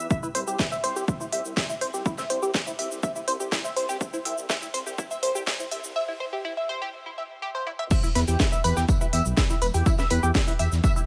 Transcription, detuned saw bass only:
0.35 0.43 C2 loud
0.48 0.56 C2 medium
0.84 0.92 C2 medium
0.96 1.04 C2 medium
1.33 1.41 C2 medium
1.45 1.53 C2 medium
1.81 1.90 C2 medium
1.94 2.02 C2 medium
2.30 2.39 C2 loud
2.43 2.51 C2 medium
2.79 2.87 C2 medium
2.91 2.99 C2 medium
3.28 3.36 C2 loud
3.40 3.48 C2 medium
3.77 3.85 C2 medium
3.89 3.97 C2 medium
4.25 4.34 C2 loud
4.38 4.46 C2 medium
4.74 4.83 C2 loud
4.87 4.95 C2 medium
5.23 5.31 C2 medium
5.35 5.43 C2 medium
5.72 5.80 C2 medium
5.84 5.92 C2 medium
8.15 8.24 E2 loud
8.28 8.36 E2 medium
8.64 8.73 E2 loud
8.77 8.85 E2 medium
9.13 9.21 E2 loud
9.25 9.34 B1 medium
9.62 9.70 E1 medium
9.74 9.82 E2 medium
10.11 10.19 E2 loud
10.23 10.31 E2 medium
10.59 10.68 E2 loud
10.72 10.80 E2 medium

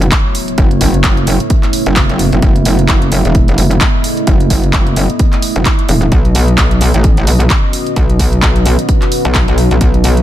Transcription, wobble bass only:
0.00 0.10 F#1 medium
0.58 1.03 F#1 loud
1.04 1.38 F#1 loud
1.87 2.08 F#1 medium
2.10 2.31 F#1 loud
2.33 2.41 F#1 loud
2.43 2.87 F#1 loud
2.89 3.23 F#1 loud
3.25 3.56 E1 loud
3.58 3.79 F#1 loud
4.27 4.72 F#1 loud
4.73 5.08 F#1 loud
5.56 5.64 F#1 loud
5.89 6.10 E1 loud
6.12 6.56 B1 loud
6.58 6.92 B1 loud
6.94 7.26 A1 loud
7.27 7.49 B1 medium
7.96 8.41 B1 loud
8.43 8.77 B1 loud
9.25 9.46 B1 loud
9.48 9.69 B1 medium
9.71 9.79 B1 loud
9.81 10.22 B1 loud

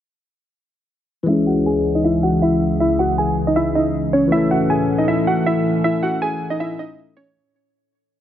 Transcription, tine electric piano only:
1.23 4.26 E3 medium
1.23 4.27 G#3 medium
1.29 4.29 C#4 medium
1.29 4.30 G#4 medium
4.27 7.30 E3 medium
4.27 7.31 A3 medium
4.34 7.33 C#4 medium
4.34 7.34 A4 medium

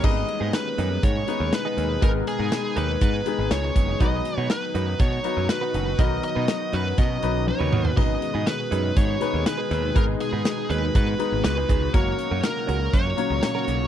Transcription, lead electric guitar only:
0.05 0.51 D#5 loud
0.54 1.05 B4 medium
1.04 1.54 C#5 loud
1.54 2.03 B4 medium
2.03 2.10 A#4 medium
2.28 2.77 G#4 medium
2.78 3.01 B4 medium
3.03 3.48 B4 loud
3.52 4.01 C#5 medium
4.01 4.47 D#5 loud
4.51 5.02 B4 medium
5.00 5.46 C#5 loud
5.50 6.01 B4 medium
5.99 6.23 D#5 loud
6.24 6.75 D#5 loud
6.74 6.97 B4 medium
6.98 7.44 D#5 loud
7.48 7.97 C#5 medium
7.97 8.48 D#5 loud
8.47 8.98 B4 medium
8.97 9.43 C#5 loud
9.47 9.96 B4 medium
9.96 10.03 A#4 medium
10.21 10.70 G#4 medium
10.71 10.93 B4 medium
10.96 11.42 B4 medium
11.45 11.91 B4 medium
11.94 12.45 C#5 medium
12.44 12.95 A#4 medium
12.94 13.87 C#5 medium

